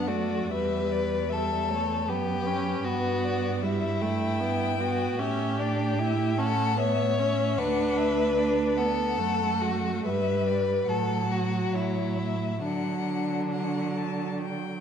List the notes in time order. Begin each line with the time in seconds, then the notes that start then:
Already playing: F#2
0.07 A3 F#4 D5
0.50 E2 G3 B4 E5
0.91 D5
1.30 G3 A4 E5
1.69 A3 C#5
2.07 F#2 B3 G4 B4
2.47 C#4
2.84 G2 B3 F#4 B4
3.25 D5
3.62 G3 E4 E5
4.01 A3 G5
4.40 B3
4.80 B3 F#4
5.19 A2 C#4 G4 E5
5.59 D4 D5
5.99 E4 E5
6.37 C#4 A4 F#5
6.78 B3 C#5 E5
7.19 C#4 E5
7.58 D2 D4 B4 F#5
7.98 E5
8.38 D4 D5
8.77 B3 A4 F#5
9.18 F#2 A3
9.61 F#4
10.04 G2 G3 B4 E5
10.47 D5
10.87 A2 F#3 A4 F#5
11.31 F#4
11.73 A2 E4 C#5
12.18 E5
12.62 D3 F#3 D4 F#5
13.53 F#5
13.98 A5
14.42 G5